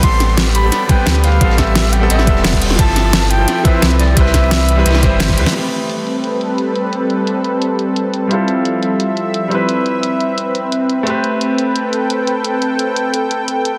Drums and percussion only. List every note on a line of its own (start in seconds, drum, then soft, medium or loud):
0.03 kick loud
0.03 closed hi-hat medium
0.03 ride medium
0.11 ride soft
0.20 snare medium
0.20 closed hi-hat medium
0.20 ride medium
0.29 ride soft
0.37 snare loud
0.37 closed hi-hat medium
0.37 ride medium
0.46 snare soft
0.55 closed hi-hat medium
0.55 ride medium
0.72 snare soft
0.72 closed hi-hat medium
0.72 ride medium
0.89 kick loud
0.89 closed hi-hat medium
0.89 ride medium
1.06 snare loud
1.06 closed hi-hat medium
1.06 ride medium
1.15 snare soft
1.24 snare medium
1.24 closed hi-hat medium
1.24 ride medium
1.32 ride soft
1.41 kick loud
1.41 closed hi-hat medium
1.41 ride medium
1.50 snare medium
1.58 kick medium
1.58 snare medium
1.58 closed hi-hat medium
1.58 ride medium
1.67 ride soft
1.75 snare loud
1.75 closed hi-hat medium
1.75 ride medium
1.84 snare soft
1.93 closed hi-hat medium
1.93 ride medium
2.10 closed hi-hat medium
2.10 ride medium
2.19 snare medium
2.27 kick loud
2.27 closed hi-hat medium
2.27 ride medium
2.36 snare soft
2.44 snare loud
2.44 closed hi-hat medium
2.44 ride medium
2.53 kick medium
2.62 closed hi-hat medium
2.62 open hi-hat medium
2.70 snare medium
2.79 kick loud
2.79 closed hi-hat medium
2.79 ride medium
2.88 ride soft
2.96 snare medium
2.96 closed hi-hat medium
2.96 ride medium
3.04 ride soft
3.13 snare loud
3.13 closed hi-hat medium
3.13 ride medium
3.22 snare soft
3.31 closed hi-hat medium
3.31 ride medium
3.48 snare soft
3.48 closed hi-hat loud
3.48 ride medium
3.65 kick loud
3.65 closed hi-hat medium
3.65 ride medium
3.82 snare loud
3.82 closed hi-hat medium
3.82 ride medium
3.91 snare soft
4.00 snare medium
4.00 closed hi-hat medium
4.00 ride medium
4.07 ride soft
4.17 kick loud
4.17 closed hi-hat medium
4.17 ride medium
4.26 snare medium
4.34 kick medium
4.34 snare medium
4.34 closed hi-hat medium
4.34 ride medium
4.43 ride soft
4.51 snare loud
4.51 closed hi-hat loud
4.51 ride medium
4.60 snare soft
4.68 closed hi-hat medium
4.68 ride medium
4.85 snare medium
4.85 closed hi-hat loud
4.85 ride medium
4.90 snare loud
4.90 ride medium
4.94 snare medium
4.94 ride medium
4.99 snare medium
4.99 ride medium
5.03 kick loud
5.03 closed hi-hat medium
5.03 ride medium
5.19 snare loud
5.19 closed hi-hat loud
5.19 high tom medium
5.19 ride medium
5.29 kick medium
5.29 snare medium
5.29 high tom medium
5.29 ride medium
5.33 snare medium
5.33 open hi-hat medium
5.33 ride medium
5.38 closed hi-hat medium
5.46 snare medium
5.55 closed hi-hat medium
5.72 closed hi-hat medium
5.89 closed hi-hat medium
6.07 closed hi-hat medium
6.24 closed hi-hat medium
6.41 closed hi-hat medium
6.58 closed hi-hat medium
6.75 closed hi-hat medium
6.93 closed hi-hat medium
7.10 closed hi-hat medium
7.27 closed hi-hat medium
7.44 closed hi-hat medium
7.62 closed hi-hat medium
7.79 closed hi-hat medium
7.96 closed hi-hat medium
8.14 closed hi-hat medium
8.31 closed hi-hat medium
8.48 closed hi-hat medium
8.65 closed hi-hat medium
8.83 closed hi-hat medium
9.00 closed hi-hat medium
9.17 closed hi-hat medium
9.34 closed hi-hat medium
9.51 closed hi-hat medium
9.69 closed hi-hat medium
9.86 closed hi-hat medium
10.03 closed hi-hat medium
10.20 closed hi-hat medium
10.38 closed hi-hat medium
10.55 closed hi-hat medium
10.72 closed hi-hat medium
10.90 closed hi-hat medium
11.07 closed hi-hat medium
11.24 closed hi-hat medium
11.41 closed hi-hat medium
11.58 closed hi-hat medium
11.76 closed hi-hat medium
11.93 closed hi-hat medium
12.10 closed hi-hat medium
12.27 closed hi-hat medium
12.44 closed hi-hat medium
12.62 closed hi-hat medium
12.79 closed hi-hat medium
12.96 closed hi-hat medium
13.14 closed hi-hat medium
13.31 closed hi-hat medium
13.48 closed hi-hat medium
13.65 closed hi-hat medium